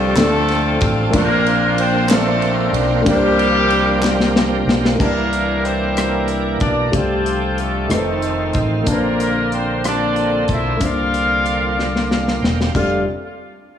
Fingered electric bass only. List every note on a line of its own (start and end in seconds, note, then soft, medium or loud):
0.00 0.13 C2 medium
0.16 0.77 D2 loud
0.82 1.11 A1 medium
1.14 2.70 A#1 loud
2.73 3.03 B1 medium
3.07 4.64 C2 loud
4.67 4.97 B1 medium
5.00 6.57 C2 medium
6.61 6.91 B1 medium
6.93 7.86 C2 medium
7.89 8.50 F1 medium
8.55 8.84 A1 medium
8.87 10.44 A#1 medium
10.49 10.78 B1 medium
10.81 12.38 C2 medium
12.42 12.72 E1 medium
12.75 13.05 F1 medium